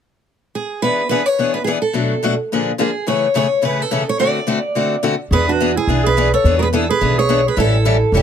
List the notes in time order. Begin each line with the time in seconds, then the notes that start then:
0.55 G#4
0.82 E3 B3 D4 G#4 B4
1.09 E3 B3 D4 G#4 B4
1.26 C#5
1.39 E3 B3 D4 G#4
1.54 B4
1.64 E3 B3 D4 G#4
1.82 A4
1.93 B2 F#3 A3 D4 F#4
2.23 B2 F#3 A3 D4 F#4
2.52 A#2 D3 F3 A#3 D4 G#4
2.78 A#2 D3 F3 A#3 D4 G#4
3.06 A2 C#3 E3 A3 C#4 G#4 C#5
3.34 A2 C#3 E3 A3 C#4 G#4 C#5
3.62 A2 C#3 E3 A3 C#4 G#4 B4
3.82 A4
3.91 A2 C#3 E3 A3 C#4 G#4
4.09 C#5
4.19 D3 A3 C4 F#4 A4 D5
4.47 D3 A3 C4 F#4 A4
4.75 D3 A3 C4 F#4 A4
5.03 D3 A3 C4 F#4 A4
5.31 E2 E3 B3 D4 G#4 B4
5.48 D4 F#4
5.60 E3 B3 D4 G#4
5.75 E4 G#4
5.87 B1 E3 B3 D4 G#4
6.03 G#4 B4
6.17 E3 B3 D4 G#4
6.33 A4 C#5
6.44 E2 E3 B3 D4 G#4
6.57 F#4 A#4
6.62 G#4 B4
6.73 E3 B3 D4 E4 G#4 A4
6.89 G#4 B4
7.01 B1 E3 B3 D4 G#4
7.18 G#4 C#5
7.29 E3 B3 D4 G#4
7.46 G#4 B4
7.56 A1 E3 G3 C#4 E4 A4
7.85 E3 G3 C#4 E4 A4
8.12 E1 E3 G3 C#4 E4 A4
8.17 G4